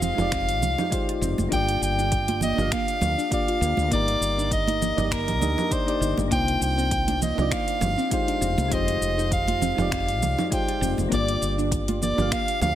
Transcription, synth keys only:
0.00 0.15 G#3 loud
0.00 0.17 D#4 medium
0.00 0.18 F4 medium
0.00 0.20 G4 medium
0.00 0.94 C5 loud
0.15 0.87 G#3 medium
0.15 0.88 D#4 medium
0.15 0.88 F4 medium
0.20 0.89 G4 medium
0.20 0.90 D5 medium
0.90 1.48 G#3 medium
0.90 1.48 D#4 medium
0.90 1.49 F4 medium
0.90 1.49 G4 medium
0.90 1.49 C5 loud
1.49 2.53 A#3 medium
1.49 2.54 D4 medium
1.49 2.54 F4 medium
1.54 2.55 G4 medium
1.54 2.56 D5 loud
2.55 3.27 A#3 medium
2.55 3.28 D4 medium
2.55 3.28 F4 medium
2.60 3.29 G4 medium
2.60 3.30 F5 medium
3.30 3.87 A#3 medium
3.30 3.88 D4 medium
3.30 3.88 F4 medium
3.30 3.89 G4 medium
3.30 3.89 D5 loud
3.88 4.93 A#3 medium
3.88 4.94 D#4 medium
3.93 4.95 G4 medium
3.93 4.96 A#4 loud
4.96 5.38 A#3 medium
4.96 5.39 D#4 medium
4.96 5.39 G4 medium
4.96 5.38 D5 medium
4.96 5.40 D#5 medium
5.39 5.54 A#3 medium
5.39 5.54 D4 medium
5.39 5.55 D#4 medium
5.39 5.55 G4 medium
5.39 5.56 D#5 loud
5.69 5.83 A#3 medium
5.69 5.83 D4 medium
5.69 5.84 D#4 medium
5.69 5.84 G4 medium
5.69 5.85 D5 medium
5.86 6.27 A#3 medium
5.86 6.28 D4 medium
5.86 6.28 D#4 medium
5.86 6.29 G4 medium
5.86 6.29 D5 loud
6.28 7.32 A#3 loud
6.28 7.33 D4 medium
6.28 7.34 D#4 medium
6.33 7.35 F4 medium
6.33 7.36 C5 loud
7.35 8.07 A#3 medium
7.35 8.07 D4 medium
7.35 8.08 D#4 medium
7.40 8.09 F4 medium
7.40 8.10 D5 medium
8.10 8.67 G#3 medium
8.10 8.68 D#4 medium
8.10 8.69 F4 medium
8.10 8.69 G4 medium
8.10 8.69 C5 loud
8.68 9.72 G#3 loud
8.68 9.73 D#4 medium
8.68 9.74 F4 medium
8.73 9.75 G4 medium
8.73 9.76 C5 loud
9.75 10.47 G#3 medium
9.75 10.48 D#4 medium
9.75 10.48 F4 medium
9.80 10.49 G4 medium
9.80 10.50 D5 medium
10.50 11.08 G#3 loud
10.50 11.08 D#4 medium
10.50 11.08 F4 medium
10.50 11.09 G4 medium
10.50 11.09 C5 loud
11.09 12.13 A#3 loud
11.09 12.13 D4 medium
11.09 12.14 F4 loud
11.14 12.15 G4 medium
11.14 12.16 D5 loud
12.15 12.75 A#3 medium
12.15 12.75 D4 medium
12.15 12.75 F4 medium
12.20 12.75 G4 medium
12.20 12.75 F5 medium

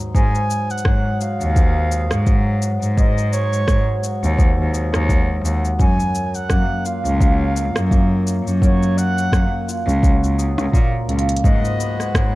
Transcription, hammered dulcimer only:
0.00 0.13 G#2 medium
0.00 0.85 F#3 medium
0.00 3.40 D#4 medium
0.00 0.15 G#4 medium
0.15 1.55 G#2 medium
0.15 1.91 G#4 medium
0.86 2.27 F#3 medium
1.21 2.62 F#4 medium
1.56 2.96 G#2 medium
1.92 2.98 G#4 medium
2.27 3.67 F#3 medium
2.63 4.02 F#4 medium
2.98 4.36 G#2 medium
2.98 4.73 G#4 medium
3.68 5.08 F#3 medium
4.03 5.44 F#4 medium
4.38 5.84 G#2 medium
4.73 7.76 G#4 medium
5.09 5.78 F#3 medium
5.44 10.97 F#4 medium
5.79 7.20 F#3 medium
5.79 7.55 A#4 medium
6.50 7.91 A#3 medium
6.85 8.67 F4 medium
7.20 8.61 F#3 medium
7.55 8.62 A#4 medium
7.91 9.32 A#3 medium
8.61 10.02 F#3 medium
8.61 10.58 A#4 medium
9.33 10.73 A#3 medium
9.68 11.09 F4 medium
10.03 12.14 F#3 medium
10.38 11.44 G#4 medium
10.58 11.85 A#4 medium
10.74 11.85 A#3 medium
11.09 12.20 F4 medium
11.44 12.35 G#2 medium
11.44 12.35 G#4 medium
11.79 12.35 B3 medium
12.14 12.35 F#3 medium

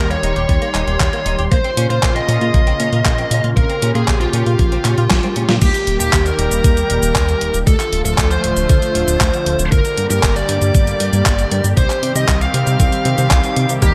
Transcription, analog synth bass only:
0.00 0.17 D#2 medium
0.23 0.33 D#1 medium
0.36 0.46 D#1 medium
0.49 0.59 D#2 loud
0.75 0.84 D#1 medium
0.87 0.97 D#1 medium
1.00 1.10 D#2 medium
1.26 1.36 D#1 medium
1.39 1.48 D#1 loud
1.52 1.61 A#1 loud
1.77 1.87 A#2 medium
1.90 2.00 A#2 medium
2.03 2.22 A#1 medium
2.28 2.38 A#2 medium
2.41 2.51 A#2 medium
2.54 2.74 A#1 medium
2.80 2.89 A#2 medium
2.93 3.02 A#2 medium
3.06 3.25 A#1 loud
3.31 3.41 A#2 medium
3.44 3.54 A#2 medium
3.57 3.66 A#1 loud
3.82 3.92 A#2 medium
3.95 4.05 A#2 medium
4.08 4.27 A#1 medium
4.33 4.43 A#2 medium
4.46 4.56 A#2 medium
4.59 4.79 A#1 loud
4.85 4.95 A#2 medium
4.98 5.07 A#2 medium
5.11 5.20 A#1 loud
5.36 5.46 A#2 medium
5.49 5.59 A#2 loud
5.62 5.71 D#2 loud
5.87 5.97 D#1 medium
6.00 6.10 D#1 medium
6.13 6.32 D#2 medium
6.39 6.48 D#1 loud
6.52 6.61 D#1 medium
6.64 6.84 D#2 medium
6.90 7.00 D#1 medium
7.03 7.13 D#1 medium
7.16 7.35 D#2 loud
7.41 7.51 D#1 medium
7.54 7.64 D#1 medium
7.67 7.77 D2 loud
7.93 8.02 D1 medium
8.05 8.15 D1 medium
8.18 8.38 D2 medium
8.44 8.54 D1 medium
8.57 8.66 D1 medium
8.70 8.79 D2 loud
8.95 9.05 D1 medium
9.08 9.18 D1 medium
9.21 9.31 D2 medium
9.46 9.56 D1 medium
9.59 9.69 D1 loud
9.72 9.82 G1 loud
9.98 10.07 G2 medium
10.10 10.20 G2 medium
10.23 10.43 G1 medium
10.49 10.59 G2 loud
10.62 10.71 G2 medium
10.75 10.94 G1 loud
11.00 11.10 G2 medium
11.13 11.23 G2 medium
11.26 11.45 G1 loud
11.52 11.61 G2 medium
11.64 11.74 G2 medium
11.77 11.87 C2 loud
12.03 12.13 C3 medium
12.16 12.25 C3 medium
12.29 12.48 C2 medium
12.54 12.64 C3 medium
12.67 12.77 C3 medium
12.80 12.89 C2 loud
13.05 13.15 C3 medium
13.18 13.28 C3 medium
13.31 13.41 C2 medium
13.57 13.66 C3 medium
13.70 13.79 C3 medium
13.82 13.92 D#2 loud

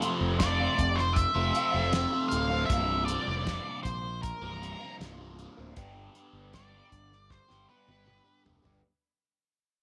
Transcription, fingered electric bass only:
0.21 0.67 F1 medium
0.79 1.25 F1 medium
1.35 1.51 F1 medium
1.74 2.05 F1 medium
2.32 2.63 D1 medium
2.70 3.16 C1 loud
3.27 3.58 F1 medium
3.85 4.31 A#1 medium
4.42 4.73 C1 medium
5.00 5.46 C1 medium
5.58 5.73 D1 medium
5.77 6.08 G1 medium
6.33 6.80 G1 medium
6.92 7.38 G1 medium
7.50 7.65 G1 medium
7.88 8.19 G1 medium
8.45 8.63 F1 medium
8.64 8.81 G1 medium

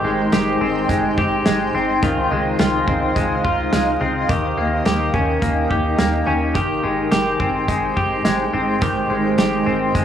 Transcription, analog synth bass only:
0.04 0.29 G#1 medium
0.32 0.57 G#1 medium
0.61 0.86 G#1 medium
0.89 1.14 G#1 loud
1.18 1.43 G#1 loud
1.46 1.71 G#1 loud
1.75 1.99 G#1 medium
2.03 2.28 C#2 loud
2.31 2.56 C#2 medium
2.60 2.84 C#2 loud
2.88 3.13 C#2 medium
3.16 3.41 C#2 loud
3.45 3.69 C#2 loud
3.73 3.97 C#2 medium
4.01 4.26 C#2 medium
4.29 4.54 D#2 loud
4.57 4.82 D#2 medium
4.86 5.11 D#2 medium
5.14 5.39 D#2 medium
5.42 5.67 D#2 loud
5.71 5.95 D#2 medium
5.99 6.24 D#2 loud
6.27 6.57 D#2 medium
6.55 6.80 G#1 medium
6.84 7.09 G#1 medium
7.12 7.37 G#1 medium
7.40 7.65 G#1 medium
7.68 7.93 G#1 loud
7.97 8.22 G#1 medium
8.25 8.50 G#1 medium
8.54 8.79 G#1 medium
8.82 9.07 G#1 loud
9.10 9.35 G#1 medium
9.38 9.63 G#1 medium
9.67 9.92 G#1 medium
9.95 10.05 G#1 loud

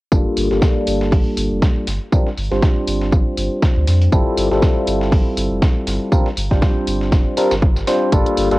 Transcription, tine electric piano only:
0.12 0.48 G3 medium
0.12 0.48 A#3 medium
0.12 0.48 D4 medium
0.12 0.48 F4 medium
0.12 0.48 A4 loud
0.51 1.86 G3 medium
0.51 1.86 A#3 medium
0.51 1.86 D4 medium
0.51 1.86 F4 medium
0.51 1.86 A4 medium
2.12 2.28 G3 medium
2.12 2.28 C4 medium
2.12 2.28 D4 medium
2.12 2.28 F4 medium
2.12 2.28 A#4 medium
2.51 4.09 G3 medium
2.51 4.10 C4 medium
2.51 4.10 D4 medium
2.51 4.10 F4 medium
2.51 4.10 C5 medium
4.12 4.48 G3 medium
4.12 4.48 C4 medium
4.12 4.48 E4 medium
4.12 4.48 F4 medium
4.12 4.48 A4 loud
4.51 6.09 G3 medium
4.51 6.09 C4 medium
4.51 6.10 E4 medium
4.51 6.10 F4 medium
4.51 6.10 A4 medium
6.12 6.28 G3 medium
6.12 6.28 C4 medium
6.12 6.28 D4 medium
6.12 6.28 F4 medium
6.12 6.28 A#4 medium
6.51 7.35 G3 medium
6.51 7.35 C4 medium
6.51 7.35 D4 medium
6.51 7.35 F4 medium
6.51 7.35 C5 medium
7.37 7.53 G3 medium
7.37 7.53 C4 medium
7.37 7.53 D4 medium
7.37 7.53 F4 medium
7.37 7.53 A#4 loud
7.87 8.09 G3 medium
7.87 8.10 C4 medium
7.87 8.10 D4 medium
7.87 8.10 F4 medium
7.87 8.10 C5 medium
8.12 8.48 G3 loud
8.12 8.48 A#3 medium
8.12 8.48 D4 medium
8.12 8.48 F4 medium
8.12 8.48 A4 loud
8.51 8.59 G3 medium
8.51 8.59 A#3 medium
8.51 8.59 D4 medium
8.51 8.59 F4 medium
8.51 8.59 A4 medium

